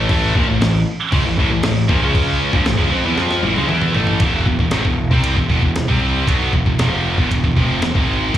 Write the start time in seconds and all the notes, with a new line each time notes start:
0.09 A1 A2 E3 A3, kick, crash
0.35 A#1 A#2 F3, kick
0.47 A1 A2 E3
0.60 A1 A2 E3, snare, crash
1.12 C#2 C#3 G#3, kick, crash
1.26 A1 A2 E3
1.38 A1 A2 E3, kick
1.50 A1 A2 E3
1.63 A1 A2 E3, snare, crash
1.89 A#1 A#2 F3, kick
2.01 C#2 C#3 G#3 C#4
2.15 kick, crash
2.53 A#1 A#2 F3, kick
2.66 A1 A2 E3, snare, crash
2.78 C#2 C#3 G#3, kick
2.92 F2 F3 C4
3.04 E2 E3 B3
3.18 F2 F3 C4 F4, snare
3.31 snare
3.43 A1 A2 E3, high tom
3.56 C#2 C#3 G#3, high tom
3.69 E2 E3 B3 E4, mid tom
3.82 mid tom
3.95 A1 A2 E3 A3, floor tom
4.07 floor tom
4.20 E1 E2 B2 E3, kick, ride bell
4.46 E1 E2 B2, kick
4.59 E1 E2 B2, kick
4.71 G#1 G#2 D#3, snare, ride bell
4.85 E1 E2 B2, kick
5.11 C2 C3 G3 C4, kick
5.24 ride bell
5.37 E1 E2 B2, kick
5.50 E1 E2 B2, kick
5.62 E1 E2 B2, kick
5.76 snare, ride bell
5.88 C2 C3 G3 C4, kick
6.27 B1 B2 F#3 B3, kick, ride bell
6.53 E1 E2 B2, kick
6.66 E1 E2 B2, kick
6.79 F1 F2 C3 F3, snare, ride bell
7.18 E1 E2 B2, kick
7.30 E1 E2 B2, kick, ride bell
7.44 E1 E2 B2, kick
7.56 F1 F2 C3 F3, kick
7.82 E1 E2 B2, snare, ride bell
7.94 G#1 G#2 D#3 G#3, kick
8.34 E1 E2 B2, kick